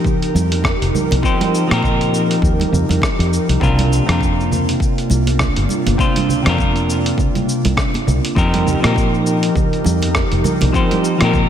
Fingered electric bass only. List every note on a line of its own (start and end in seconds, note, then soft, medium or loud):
0.35 0.72 F2 medium
0.82 0.90 F1 medium
1.12 1.20 C2 medium
1.71 2.36 A#2 medium
2.42 2.63 D#2 medium
2.72 2.84 F2 medium
2.89 2.98 F2 medium
3.19 3.37 F2 loud
3.49 3.57 C2 medium
3.61 3.99 C2 medium
4.08 4.73 F2 medium
5.10 5.47 C2 medium
5.57 5.65 G1 medium
5.87 5.95 G1 medium
6.46 7.11 F2 medium
7.65 7.73 C2 medium
8.08 8.18 C2 medium
8.37 8.74 F2 medium
8.84 9.49 A#2 medium
9.86 10.23 F2 medium
10.32 10.40 F1 medium
10.62 10.70 C2 medium
11.21 11.49 A#2 medium